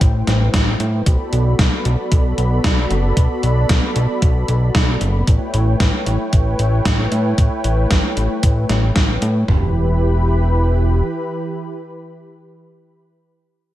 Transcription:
0.00 0.23 A1 loud
0.00 1.02 A3 medium
0.00 1.02 E4 medium
0.00 1.02 B4 medium
0.00 1.02 C5 medium
0.00 1.02 G5 medium
0.00 kick loud
0.00 closed hi-hat medium
0.27 0.49 A1 medium
0.27 snare medium
0.27 closed hi-hat medium
0.54 0.76 A1 medium
0.54 kick loud
0.54 snare loud
0.54 closed hi-hat medium
0.80 1.02 A2 loud
0.80 closed hi-hat medium
1.06 1.17 B1 loud
1.06 5.23 B3 medium
1.06 5.23 F#4 medium
1.06 5.23 A4 medium
1.06 5.23 D5 medium
1.06 5.23 B5 medium
1.06 kick loud
1.06 closed hi-hat medium
1.33 1.55 B1 medium
1.33 closed hi-hat medium
1.59 1.70 B1 loud
1.59 kick loud
1.59 snare loud
1.59 closed hi-hat medium
1.85 1.96 B1 loud
1.85 closed hi-hat medium
2.12 2.34 B1 loud
2.12 kick loud
2.12 closed hi-hat medium
2.38 2.60 B1 medium
2.38 closed hi-hat medium
2.64 2.86 B1 medium
2.64 kick loud
2.64 snare loud
2.64 closed hi-hat medium
2.91 3.13 F#1 loud
2.91 closed hi-hat medium
3.17 3.28 B1 medium
3.17 kick loud
3.17 closed hi-hat medium
3.43 3.65 B1 medium
3.43 closed hi-hat medium
3.69 3.81 B1 medium
3.69 kick loud
3.69 snare loud
3.69 closed hi-hat medium
3.96 4.07 B1 medium
3.96 closed hi-hat medium
4.22 4.44 B1 loud
4.22 kick loud
4.22 closed hi-hat medium
4.48 4.70 B1 medium
4.48 closed hi-hat medium
4.75 4.97 B1 loud
4.75 kick loud
4.75 snare loud
4.75 closed hi-hat medium
5.01 5.23 F#1 loud
5.01 closed hi-hat medium
5.27 5.38 A1 loud
5.27 9.44 A3 medium
5.27 9.44 E4 medium
5.27 9.44 B4 medium
5.27 9.44 C#5 medium
5.27 9.44 G5 medium
5.27 kick loud
5.27 closed hi-hat medium
5.54 5.76 A1 medium
5.54 closed hi-hat medium
5.80 5.91 A1 loud
5.80 kick loud
5.80 snare loud
5.80 closed hi-hat medium
6.06 6.17 A1 loud
6.06 closed hi-hat medium
6.33 6.55 A1 loud
6.33 kick loud
6.33 closed hi-hat medium
6.59 6.81 A1 medium
6.59 closed hi-hat medium
6.85 7.07 A1 loud
6.85 kick loud
6.85 snare loud
6.85 closed hi-hat medium
7.12 7.34 A2 loud
7.12 closed hi-hat medium
7.38 7.49 A1 medium
7.38 kick loud
7.38 closed hi-hat medium
7.64 7.86 A1 medium
7.64 closed hi-hat medium
7.91 8.02 A1 medium
7.91 kick loud
7.91 snare loud
7.91 closed hi-hat medium
8.17 8.28 A1 medium
8.17 closed hi-hat medium
8.43 8.65 A1 loud
8.43 kick loud
8.43 closed hi-hat medium
8.69 8.92 A1 medium
8.69 snare medium
8.69 closed hi-hat medium
8.96 9.18 A1 medium
8.96 kick loud
8.96 snare loud
8.96 closed hi-hat medium
9.22 9.44 A2 loud
9.22 closed hi-hat medium
9.48 11.02 E1 medium
9.48 13.02 E3 medium
9.48 13.02 E4 medium
9.48 13.02 G4 medium
9.48 13.02 B4 medium
9.48 13.02 B5 medium
9.48 kick loud
9.48 floor tom loud

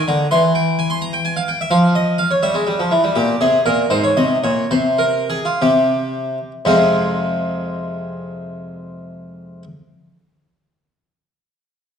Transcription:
0.08 0.25 D3 medium
0.08 0.32 A#5 medium
0.31 1.33 E3 medium
0.31 0.51 C6 medium
0.55 0.78 G5 medium
0.79 0.90 G#5 medium
0.90 1.02 C6 medium
1.01 1.14 A#5 loud
1.13 1.25 G5 medium
1.25 1.37 G#5 medium
1.37 1.49 F5 medium
1.48 1.60 G5 medium
1.61 1.73 E5 medium
1.71 2.23 F3 medium
1.71 1.91 F5 medium
1.95 2.19 D#5 medium
2.19 2.31 F5 medium
2.31 2.43 C#5 medium
2.43 2.54 G3 medium
2.43 2.67 E5 medium
2.54 2.66 G#3 medium
2.67 2.79 G3 medium
2.80 2.91 F3 medium
2.91 3.03 E3 medium
3.04 3.15 G3 medium
3.16 3.33 A#2 medium
3.16 3.40 G4 medium
3.41 3.59 C3 medium
3.41 3.65 G#4 medium
3.66 3.84 A#2 medium
3.66 3.91 A#4 medium
3.90 4.09 G#2 medium
3.90 4.04 C5 medium
4.04 4.17 C#5 medium
4.17 4.36 C3 medium
4.17 4.44 D#5 medium
4.44 4.64 A#2 medium
4.44 4.71 C#5 medium
4.71 5.36 C3 medium
4.71 5.00 C5 medium
4.98 5.29 A#4 medium
5.30 5.45 G#4 medium
5.45 5.61 F4 soft
5.61 6.38 C3 medium
5.61 6.52 G4 medium
6.65 9.62 F2 medium
6.65 9.62 C3 soft
6.65 9.63 G#3 soft
6.65 9.64 C4 soft
6.65 9.64 F4 soft
6.65 9.64 G#4 medium

